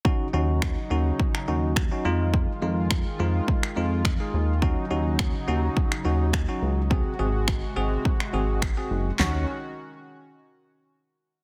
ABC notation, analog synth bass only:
X:1
M:4/4
L:1/8
Q:1/4=105
K:Ebdor
V:1 name="Analog synth bass" clef=bass
z E,,2 E,, z E,,2 F,,- | F,, F,,2 F,, z F,,2 E,,- | E,, E,,2 E,, z E,,2 D,,- | D,, A,,,2 A,,, z A,,,2 G,,, |
E,, z6 z |]